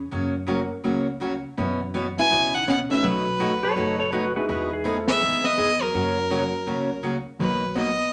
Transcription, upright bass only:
0, 0, Header, 1, 2, 480
1, 0, Start_track
1, 0, Key_signature, 5, "major"
1, 0, Tempo, 364078
1, 157, Time_signature, 4, 2, 24, 8
1, 10717, End_track
2, 0, Start_track
2, 0, Title_t, "Upright bass"
2, 0, Program_c, 0, 32
2, 162, Note_on_c, 0, 42, 93
2, 927, Note_off_c, 0, 42, 0
2, 1123, Note_on_c, 0, 37, 76
2, 1888, Note_off_c, 0, 37, 0
2, 2081, Note_on_c, 0, 42, 93
2, 2847, Note_off_c, 0, 42, 0
2, 3034, Note_on_c, 0, 37, 74
2, 3802, Note_off_c, 0, 37, 0
2, 3990, Note_on_c, 0, 35, 100
2, 4760, Note_off_c, 0, 35, 0
2, 4953, Note_on_c, 0, 30, 80
2, 5721, Note_off_c, 0, 30, 0
2, 5920, Note_on_c, 0, 40, 99
2, 6685, Note_off_c, 0, 40, 0
2, 6878, Note_on_c, 0, 39, 83
2, 7284, Note_off_c, 0, 39, 0
2, 7352, Note_on_c, 0, 40, 86
2, 7760, Note_off_c, 0, 40, 0
2, 7833, Note_on_c, 0, 42, 89
2, 8602, Note_off_c, 0, 42, 0
2, 8792, Note_on_c, 0, 37, 76
2, 9562, Note_off_c, 0, 37, 0
2, 9752, Note_on_c, 0, 35, 86
2, 10524, Note_off_c, 0, 35, 0
2, 10717, End_track
0, 0, End_of_file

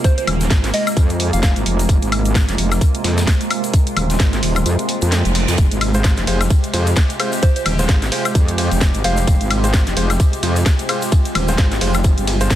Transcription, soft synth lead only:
0, 0, Header, 1, 2, 480
1, 0, Start_track
1, 0, Key_signature, -4, "minor"
1, 0, Tempo, 461538
1, 46, Time_signature, 4, 2, 24, 8
1, 13056, End_track
2, 0, Start_track
2, 0, Title_t, "Soft synth lead"
2, 0, Program_c, 0, 80
2, 45, Note_on_c, 0, 72, 90
2, 134, Note_off_c, 0, 72, 0
2, 184, Note_on_c, 0, 72, 78
2, 249, Note_off_c, 0, 72, 0
2, 767, Note_on_c, 0, 75, 94
2, 928, Note_off_c, 0, 75, 0
2, 1385, Note_on_c, 0, 77, 92
2, 1449, Note_off_c, 0, 77, 0
2, 1484, Note_on_c, 0, 77, 81
2, 1574, Note_off_c, 0, 77, 0
2, 7724, Note_on_c, 0, 72, 90
2, 7813, Note_off_c, 0, 72, 0
2, 7865, Note_on_c, 0, 72, 76
2, 7929, Note_off_c, 0, 72, 0
2, 9404, Note_on_c, 0, 77, 97
2, 9885, Note_off_c, 0, 77, 0
2, 13056, End_track
0, 0, End_of_file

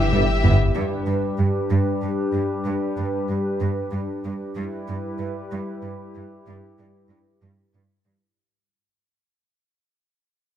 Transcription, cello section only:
0, 0, Header, 1, 2, 480
1, 0, Start_track
1, 0, Key_signature, 1, "minor"
1, 0, Tempo, 634921
1, 573, Time_signature, 6, 3, 24, 8
1, 7986, End_track
2, 0, Start_track
2, 0, Title_t, "Cello section"
2, 0, Program_c, 0, 48
2, 94, Note_on_c, 0, 43, 30
2, 154, Note_off_c, 0, 43, 0
2, 332, Note_on_c, 0, 43, 29
2, 393, Note_off_c, 0, 43, 0
2, 572, Note_on_c, 0, 43, 52
2, 633, Note_off_c, 0, 43, 0
2, 808, Note_on_c, 0, 43, 37
2, 869, Note_off_c, 0, 43, 0
2, 1051, Note_on_c, 0, 43, 37
2, 1112, Note_off_c, 0, 43, 0
2, 1291, Note_on_c, 0, 43, 54
2, 1351, Note_off_c, 0, 43, 0
2, 1533, Note_on_c, 0, 43, 34
2, 1593, Note_off_c, 0, 43, 0
2, 1770, Note_on_c, 0, 43, 35
2, 1830, Note_off_c, 0, 43, 0
2, 2008, Note_on_c, 0, 43, 48
2, 2069, Note_off_c, 0, 43, 0
2, 2250, Note_on_c, 0, 43, 35
2, 2310, Note_off_c, 0, 43, 0
2, 2489, Note_on_c, 0, 43, 36
2, 2549, Note_off_c, 0, 43, 0
2, 2727, Note_on_c, 0, 43, 53
2, 2788, Note_off_c, 0, 43, 0
2, 2966, Note_on_c, 0, 43, 37
2, 3026, Note_off_c, 0, 43, 0
2, 3210, Note_on_c, 0, 43, 35
2, 3270, Note_off_c, 0, 43, 0
2, 3449, Note_on_c, 0, 43, 53
2, 3509, Note_off_c, 0, 43, 0
2, 3691, Note_on_c, 0, 43, 40
2, 3751, Note_off_c, 0, 43, 0
2, 3931, Note_on_c, 0, 43, 37
2, 3991, Note_off_c, 0, 43, 0
2, 4171, Note_on_c, 0, 43, 61
2, 4232, Note_off_c, 0, 43, 0
2, 4411, Note_on_c, 0, 43, 38
2, 4471, Note_off_c, 0, 43, 0
2, 4654, Note_on_c, 0, 43, 38
2, 4715, Note_off_c, 0, 43, 0
2, 4892, Note_on_c, 0, 43, 56
2, 4952, Note_off_c, 0, 43, 0
2, 5131, Note_on_c, 0, 43, 40
2, 5191, Note_off_c, 0, 43, 0
2, 5368, Note_on_c, 0, 43, 36
2, 5428, Note_off_c, 0, 43, 0
2, 5609, Note_on_c, 0, 43, 49
2, 5670, Note_off_c, 0, 43, 0
2, 5851, Note_on_c, 0, 43, 35
2, 5911, Note_off_c, 0, 43, 0
2, 6090, Note_on_c, 0, 43, 30
2, 6151, Note_off_c, 0, 43, 0
2, 7986, End_track
0, 0, End_of_file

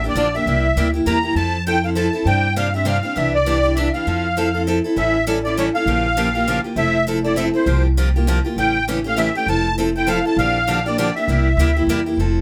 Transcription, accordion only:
0, 0, Header, 1, 2, 480
1, 0, Start_track
1, 0, Key_signature, -1, "major"
1, 0, Tempo, 300601
1, 730, Time_signature, 3, 2, 24, 8
1, 19823, End_track
2, 0, Start_track
2, 0, Title_t, "Accordion"
2, 0, Program_c, 0, 21
2, 125, Note_on_c, 0, 74, 85
2, 564, Note_on_c, 0, 76, 89
2, 565, Note_off_c, 0, 74, 0
2, 1445, Note_off_c, 0, 76, 0
2, 1707, Note_on_c, 0, 82, 96
2, 2145, Note_off_c, 0, 82, 0
2, 2177, Note_on_c, 0, 81, 103
2, 2620, Note_off_c, 0, 81, 0
2, 2666, Note_on_c, 0, 79, 98
2, 2947, Note_on_c, 0, 77, 81
2, 2951, Note_off_c, 0, 79, 0
2, 3032, Note_off_c, 0, 77, 0
2, 3145, Note_on_c, 0, 81, 82
2, 3623, Note_on_c, 0, 79, 96
2, 3632, Note_off_c, 0, 81, 0
2, 4063, Note_off_c, 0, 79, 0
2, 4108, Note_on_c, 0, 77, 89
2, 4364, Note_off_c, 0, 77, 0
2, 4393, Note_on_c, 0, 76, 74
2, 4566, Note_off_c, 0, 76, 0
2, 4584, Note_on_c, 0, 77, 76
2, 5044, Note_on_c, 0, 76, 89
2, 5071, Note_off_c, 0, 77, 0
2, 5311, Note_off_c, 0, 76, 0
2, 5342, Note_on_c, 0, 74, 99
2, 5992, Note_on_c, 0, 76, 79
2, 6033, Note_off_c, 0, 74, 0
2, 6264, Note_off_c, 0, 76, 0
2, 6291, Note_on_c, 0, 77, 79
2, 7383, Note_off_c, 0, 77, 0
2, 7945, Note_on_c, 0, 76, 100
2, 8383, Note_off_c, 0, 76, 0
2, 8690, Note_on_c, 0, 74, 90
2, 8892, Note_off_c, 0, 74, 0
2, 8915, Note_on_c, 0, 73, 79
2, 9037, Note_off_c, 0, 73, 0
2, 9180, Note_on_c, 0, 77, 101
2, 10550, Note_off_c, 0, 77, 0
2, 10824, Note_on_c, 0, 76, 109
2, 11261, Note_off_c, 0, 76, 0
2, 11572, Note_on_c, 0, 74, 77
2, 11752, Note_off_c, 0, 74, 0
2, 11762, Note_on_c, 0, 76, 86
2, 11891, Note_off_c, 0, 76, 0
2, 12060, Note_on_c, 0, 72, 73
2, 12501, Note_off_c, 0, 72, 0
2, 13708, Note_on_c, 0, 79, 97
2, 14143, Note_off_c, 0, 79, 0
2, 14498, Note_on_c, 0, 77, 92
2, 14656, Note_off_c, 0, 77, 0
2, 14656, Note_on_c, 0, 76, 91
2, 14942, Note_off_c, 0, 76, 0
2, 14959, Note_on_c, 0, 79, 77
2, 15144, Note_off_c, 0, 79, 0
2, 15156, Note_on_c, 0, 81, 107
2, 15587, Note_off_c, 0, 81, 0
2, 15921, Note_on_c, 0, 79, 82
2, 16105, Note_off_c, 0, 79, 0
2, 16106, Note_on_c, 0, 77, 86
2, 16360, Note_off_c, 0, 77, 0
2, 16386, Note_on_c, 0, 81, 80
2, 16560, Note_off_c, 0, 81, 0
2, 16578, Note_on_c, 0, 77, 103
2, 17355, Note_on_c, 0, 74, 80
2, 17359, Note_off_c, 0, 77, 0
2, 17519, Note_off_c, 0, 74, 0
2, 17543, Note_on_c, 0, 74, 76
2, 17800, Note_off_c, 0, 74, 0
2, 17808, Note_on_c, 0, 76, 79
2, 18902, Note_off_c, 0, 76, 0
2, 19823, End_track
0, 0, End_of_file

